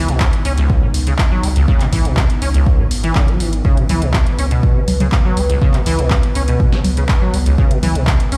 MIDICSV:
0, 0, Header, 1, 5, 480
1, 0, Start_track
1, 0, Key_signature, 4, "minor"
1, 0, Tempo, 491803
1, 1641, Time_signature, 4, 2, 24, 8
1, 8170, End_track
2, 0, Start_track
2, 0, Title_t, "Analog synth pad"
2, 0, Program_c, 0, 89
2, 0, Note_on_c, 0, 59, 73
2, 0, Note_on_c, 0, 63, 77
2, 3560, Note_on_c, 0, 71, 73
2, 3585, Note_off_c, 0, 63, 0
2, 7399, Note_on_c, 0, 61, 74
2, 7425, Note_off_c, 0, 71, 0
2, 8170, Note_off_c, 0, 59, 0
2, 8170, Note_off_c, 0, 61, 0
2, 8170, End_track
3, 0, Start_track
3, 0, Title_t, "Acid bass"
3, 0, Program_c, 1, 38
3, 82, Note_on_c, 1, 47, 102
3, 200, Note_on_c, 1, 49, 83
3, 215, Note_off_c, 1, 47, 0
3, 268, Note_off_c, 1, 49, 0
3, 440, Note_on_c, 1, 61, 75
3, 508, Note_off_c, 1, 61, 0
3, 563, Note_on_c, 1, 37, 100
3, 803, Note_on_c, 1, 49, 77
3, 818, Note_off_c, 1, 37, 0
3, 868, Note_off_c, 1, 49, 0
3, 1043, Note_on_c, 1, 49, 76
3, 1108, Note_off_c, 1, 49, 0
3, 1284, Note_on_c, 1, 54, 73
3, 1400, Note_on_c, 1, 56, 78
3, 1415, Note_off_c, 1, 54, 0
3, 1441, Note_off_c, 1, 56, 0
3, 1523, Note_on_c, 1, 37, 104
3, 1620, Note_off_c, 1, 37, 0
3, 1641, Note_on_c, 1, 49, 101
3, 1763, Note_on_c, 1, 47, 99
3, 1778, Note_off_c, 1, 49, 0
3, 1828, Note_off_c, 1, 47, 0
3, 1881, Note_on_c, 1, 52, 100
3, 2003, Note_on_c, 1, 47, 97
3, 2018, Note_off_c, 1, 52, 0
3, 2121, Note_on_c, 1, 49, 81
3, 2135, Note_off_c, 1, 47, 0
3, 2188, Note_off_c, 1, 49, 0
3, 2361, Note_on_c, 1, 61, 75
3, 2428, Note_off_c, 1, 61, 0
3, 2483, Note_on_c, 1, 37, 103
3, 2724, Note_on_c, 1, 49, 77
3, 2738, Note_off_c, 1, 37, 0
3, 2788, Note_off_c, 1, 49, 0
3, 2963, Note_on_c, 1, 52, 99
3, 3080, Note_on_c, 1, 49, 80
3, 3094, Note_off_c, 1, 52, 0
3, 3203, Note_on_c, 1, 54, 97
3, 3218, Note_off_c, 1, 49, 0
3, 3320, Note_on_c, 1, 52, 75
3, 3335, Note_off_c, 1, 54, 0
3, 3443, Note_on_c, 1, 51, 76
3, 3458, Note_off_c, 1, 52, 0
3, 3540, Note_off_c, 1, 51, 0
3, 3561, Note_on_c, 1, 49, 104
3, 3684, Note_on_c, 1, 47, 97
3, 3698, Note_off_c, 1, 49, 0
3, 3748, Note_off_c, 1, 47, 0
3, 3802, Note_on_c, 1, 52, 101
3, 3924, Note_on_c, 1, 47, 98
3, 3939, Note_off_c, 1, 52, 0
3, 4042, Note_on_c, 1, 49, 83
3, 4056, Note_off_c, 1, 47, 0
3, 4109, Note_off_c, 1, 49, 0
3, 4282, Note_on_c, 1, 61, 77
3, 4349, Note_off_c, 1, 61, 0
3, 4404, Note_on_c, 1, 47, 78
3, 4644, Note_on_c, 1, 49, 78
3, 4659, Note_off_c, 1, 47, 0
3, 4708, Note_off_c, 1, 49, 0
3, 4884, Note_on_c, 1, 49, 76
3, 4948, Note_off_c, 1, 49, 0
3, 5124, Note_on_c, 1, 54, 77
3, 5242, Note_on_c, 1, 56, 76
3, 5257, Note_off_c, 1, 54, 0
3, 5282, Note_off_c, 1, 56, 0
3, 5364, Note_on_c, 1, 37, 105
3, 5461, Note_off_c, 1, 37, 0
3, 5482, Note_on_c, 1, 49, 100
3, 5605, Note_on_c, 1, 47, 101
3, 5620, Note_off_c, 1, 49, 0
3, 5669, Note_off_c, 1, 47, 0
3, 5722, Note_on_c, 1, 52, 100
3, 5844, Note_on_c, 1, 47, 100
3, 5859, Note_off_c, 1, 52, 0
3, 5962, Note_on_c, 1, 49, 83
3, 5977, Note_off_c, 1, 47, 0
3, 6029, Note_off_c, 1, 49, 0
3, 6202, Note_on_c, 1, 61, 74
3, 6269, Note_off_c, 1, 61, 0
3, 6324, Note_on_c, 1, 47, 75
3, 6564, Note_on_c, 1, 49, 77
3, 6579, Note_off_c, 1, 47, 0
3, 6628, Note_off_c, 1, 49, 0
3, 6804, Note_on_c, 1, 49, 75
3, 6868, Note_off_c, 1, 49, 0
3, 7043, Note_on_c, 1, 54, 74
3, 7161, Note_on_c, 1, 56, 75
3, 7176, Note_off_c, 1, 54, 0
3, 7201, Note_off_c, 1, 56, 0
3, 7283, Note_on_c, 1, 37, 101
3, 7380, Note_off_c, 1, 37, 0
3, 7401, Note_on_c, 1, 49, 102
3, 7523, Note_on_c, 1, 47, 101
3, 7538, Note_off_c, 1, 49, 0
3, 7588, Note_off_c, 1, 47, 0
3, 7640, Note_on_c, 1, 52, 103
3, 7762, Note_on_c, 1, 47, 99
3, 7777, Note_off_c, 1, 52, 0
3, 7880, Note_on_c, 1, 49, 79
3, 7895, Note_off_c, 1, 47, 0
3, 7948, Note_off_c, 1, 49, 0
3, 8119, Note_on_c, 1, 61, 78
3, 8170, Note_off_c, 1, 61, 0
3, 8170, End_track
4, 0, Start_track
4, 0, Title_t, "Sub bass"
4, 0, Program_c, 2, 38
4, 82, Note_on_c, 2, 37, 97
4, 277, Note_off_c, 2, 37, 0
4, 439, Note_on_c, 2, 37, 100
4, 636, Note_off_c, 2, 37, 0
4, 920, Note_on_c, 2, 37, 87
4, 1117, Note_off_c, 2, 37, 0
4, 1400, Note_on_c, 2, 37, 89
4, 1597, Note_off_c, 2, 37, 0
4, 1880, Note_on_c, 2, 37, 101
4, 1980, Note_off_c, 2, 37, 0
4, 2002, Note_on_c, 2, 37, 99
4, 2197, Note_off_c, 2, 37, 0
4, 2360, Note_on_c, 2, 37, 102
4, 2557, Note_off_c, 2, 37, 0
4, 2840, Note_on_c, 2, 32, 97
4, 3037, Note_off_c, 2, 32, 0
4, 3320, Note_on_c, 2, 32, 96
4, 3517, Note_off_c, 2, 32, 0
4, 3801, Note_on_c, 2, 37, 101
4, 3900, Note_off_c, 2, 37, 0
4, 3923, Note_on_c, 2, 37, 100
4, 4118, Note_off_c, 2, 37, 0
4, 4281, Note_on_c, 2, 37, 107
4, 4477, Note_off_c, 2, 37, 0
4, 4761, Note_on_c, 2, 37, 87
4, 4957, Note_off_c, 2, 37, 0
4, 5241, Note_on_c, 2, 37, 89
4, 5437, Note_off_c, 2, 37, 0
4, 5721, Note_on_c, 2, 37, 104
4, 5820, Note_off_c, 2, 37, 0
4, 5844, Note_on_c, 2, 37, 100
4, 6038, Note_off_c, 2, 37, 0
4, 6201, Note_on_c, 2, 37, 104
4, 6397, Note_off_c, 2, 37, 0
4, 6680, Note_on_c, 2, 37, 88
4, 6877, Note_off_c, 2, 37, 0
4, 7160, Note_on_c, 2, 37, 88
4, 7357, Note_off_c, 2, 37, 0
4, 7641, Note_on_c, 2, 37, 98
4, 7740, Note_off_c, 2, 37, 0
4, 7763, Note_on_c, 2, 37, 104
4, 7957, Note_off_c, 2, 37, 0
4, 8120, Note_on_c, 2, 37, 102
4, 8170, Note_off_c, 2, 37, 0
4, 8170, End_track
5, 0, Start_track
5, 0, Title_t, "Drums"
5, 82, Note_on_c, 9, 42, 62
5, 180, Note_off_c, 9, 42, 0
5, 196, Note_on_c, 9, 39, 123
5, 200, Note_on_c, 9, 36, 119
5, 293, Note_off_c, 9, 39, 0
5, 298, Note_off_c, 9, 36, 0
5, 322, Note_on_c, 9, 42, 51
5, 420, Note_off_c, 9, 42, 0
5, 440, Note_on_c, 9, 46, 111
5, 537, Note_off_c, 9, 46, 0
5, 562, Note_on_c, 9, 42, 60
5, 659, Note_off_c, 9, 42, 0
5, 680, Note_on_c, 9, 36, 120
5, 778, Note_off_c, 9, 36, 0
5, 919, Note_on_c, 9, 46, 102
5, 1017, Note_off_c, 9, 46, 0
5, 1042, Note_on_c, 9, 42, 61
5, 1140, Note_off_c, 9, 42, 0
5, 1156, Note_on_c, 9, 39, 117
5, 1160, Note_on_c, 9, 36, 118
5, 1254, Note_off_c, 9, 39, 0
5, 1258, Note_off_c, 9, 36, 0
5, 1400, Note_on_c, 9, 46, 110
5, 1498, Note_off_c, 9, 46, 0
5, 1522, Note_on_c, 9, 42, 62
5, 1620, Note_off_c, 9, 42, 0
5, 1641, Note_on_c, 9, 36, 125
5, 1738, Note_off_c, 9, 36, 0
5, 1759, Note_on_c, 9, 39, 36
5, 1762, Note_on_c, 9, 42, 52
5, 1856, Note_off_c, 9, 39, 0
5, 1860, Note_off_c, 9, 42, 0
5, 1880, Note_on_c, 9, 36, 62
5, 1880, Note_on_c, 9, 46, 105
5, 1977, Note_off_c, 9, 46, 0
5, 1978, Note_off_c, 9, 36, 0
5, 2003, Note_on_c, 9, 42, 62
5, 2100, Note_off_c, 9, 42, 0
5, 2116, Note_on_c, 9, 39, 112
5, 2120, Note_on_c, 9, 36, 116
5, 2214, Note_off_c, 9, 39, 0
5, 2218, Note_off_c, 9, 36, 0
5, 2243, Note_on_c, 9, 42, 49
5, 2340, Note_off_c, 9, 42, 0
5, 2360, Note_on_c, 9, 46, 110
5, 2458, Note_off_c, 9, 46, 0
5, 2483, Note_on_c, 9, 42, 58
5, 2580, Note_off_c, 9, 42, 0
5, 2601, Note_on_c, 9, 36, 121
5, 2698, Note_off_c, 9, 36, 0
5, 2840, Note_on_c, 9, 46, 107
5, 2938, Note_off_c, 9, 46, 0
5, 2963, Note_on_c, 9, 42, 64
5, 3060, Note_off_c, 9, 42, 0
5, 3076, Note_on_c, 9, 39, 111
5, 3081, Note_on_c, 9, 36, 118
5, 3174, Note_off_c, 9, 39, 0
5, 3178, Note_off_c, 9, 36, 0
5, 3203, Note_on_c, 9, 42, 34
5, 3301, Note_off_c, 9, 42, 0
5, 3321, Note_on_c, 9, 46, 108
5, 3418, Note_off_c, 9, 46, 0
5, 3443, Note_on_c, 9, 42, 60
5, 3541, Note_off_c, 9, 42, 0
5, 3561, Note_on_c, 9, 36, 120
5, 3658, Note_off_c, 9, 36, 0
5, 3683, Note_on_c, 9, 42, 51
5, 3780, Note_off_c, 9, 42, 0
5, 3800, Note_on_c, 9, 46, 101
5, 3800, Note_on_c, 9, 64, 76
5, 3898, Note_off_c, 9, 46, 0
5, 3898, Note_off_c, 9, 64, 0
5, 3923, Note_on_c, 9, 42, 63
5, 4020, Note_off_c, 9, 42, 0
5, 4036, Note_on_c, 9, 39, 111
5, 4041, Note_on_c, 9, 36, 116
5, 4134, Note_off_c, 9, 39, 0
5, 4138, Note_off_c, 9, 36, 0
5, 4163, Note_on_c, 9, 42, 49
5, 4260, Note_off_c, 9, 42, 0
5, 4280, Note_on_c, 9, 46, 106
5, 4378, Note_off_c, 9, 46, 0
5, 4403, Note_on_c, 9, 42, 58
5, 4500, Note_off_c, 9, 42, 0
5, 4521, Note_on_c, 9, 36, 111
5, 4619, Note_off_c, 9, 36, 0
5, 4761, Note_on_c, 9, 46, 104
5, 4761, Note_on_c, 9, 64, 85
5, 4858, Note_off_c, 9, 46, 0
5, 4858, Note_off_c, 9, 64, 0
5, 4883, Note_on_c, 9, 42, 60
5, 4883, Note_on_c, 9, 64, 86
5, 4981, Note_off_c, 9, 42, 0
5, 4981, Note_off_c, 9, 64, 0
5, 4997, Note_on_c, 9, 39, 109
5, 5001, Note_on_c, 9, 36, 117
5, 5095, Note_off_c, 9, 39, 0
5, 5099, Note_off_c, 9, 36, 0
5, 5241, Note_on_c, 9, 46, 105
5, 5338, Note_off_c, 9, 46, 0
5, 5364, Note_on_c, 9, 42, 60
5, 5461, Note_off_c, 9, 42, 0
5, 5481, Note_on_c, 9, 36, 116
5, 5579, Note_off_c, 9, 36, 0
5, 5600, Note_on_c, 9, 39, 35
5, 5603, Note_on_c, 9, 42, 52
5, 5697, Note_off_c, 9, 39, 0
5, 5701, Note_off_c, 9, 42, 0
5, 5721, Note_on_c, 9, 46, 97
5, 5818, Note_off_c, 9, 46, 0
5, 5843, Note_on_c, 9, 42, 65
5, 5941, Note_off_c, 9, 42, 0
5, 5957, Note_on_c, 9, 39, 114
5, 5961, Note_on_c, 9, 36, 107
5, 6054, Note_off_c, 9, 39, 0
5, 6059, Note_off_c, 9, 36, 0
5, 6083, Note_on_c, 9, 42, 50
5, 6180, Note_off_c, 9, 42, 0
5, 6201, Note_on_c, 9, 46, 105
5, 6298, Note_off_c, 9, 46, 0
5, 6323, Note_on_c, 9, 42, 61
5, 6421, Note_off_c, 9, 42, 0
5, 6441, Note_on_c, 9, 36, 117
5, 6539, Note_off_c, 9, 36, 0
5, 6563, Note_on_c, 9, 38, 61
5, 6661, Note_off_c, 9, 38, 0
5, 6681, Note_on_c, 9, 46, 98
5, 6681, Note_on_c, 9, 64, 85
5, 6778, Note_off_c, 9, 46, 0
5, 6778, Note_off_c, 9, 64, 0
5, 6803, Note_on_c, 9, 42, 65
5, 6901, Note_off_c, 9, 42, 0
5, 6917, Note_on_c, 9, 39, 107
5, 6921, Note_on_c, 9, 36, 114
5, 7015, Note_off_c, 9, 39, 0
5, 7019, Note_off_c, 9, 36, 0
5, 7161, Note_on_c, 9, 46, 99
5, 7258, Note_off_c, 9, 46, 0
5, 7283, Note_on_c, 9, 42, 64
5, 7381, Note_off_c, 9, 42, 0
5, 7401, Note_on_c, 9, 36, 113
5, 7499, Note_off_c, 9, 36, 0
5, 7524, Note_on_c, 9, 42, 55
5, 7621, Note_off_c, 9, 42, 0
5, 7641, Note_on_c, 9, 46, 98
5, 7641, Note_on_c, 9, 64, 79
5, 7739, Note_off_c, 9, 46, 0
5, 7739, Note_off_c, 9, 64, 0
5, 7763, Note_on_c, 9, 42, 68
5, 7861, Note_off_c, 9, 42, 0
5, 7877, Note_on_c, 9, 39, 117
5, 7881, Note_on_c, 9, 36, 107
5, 7975, Note_off_c, 9, 39, 0
5, 7978, Note_off_c, 9, 36, 0
5, 8003, Note_on_c, 9, 42, 51
5, 8101, Note_off_c, 9, 42, 0
5, 8121, Note_on_c, 9, 46, 99
5, 8170, Note_off_c, 9, 46, 0
5, 8170, End_track
0, 0, End_of_file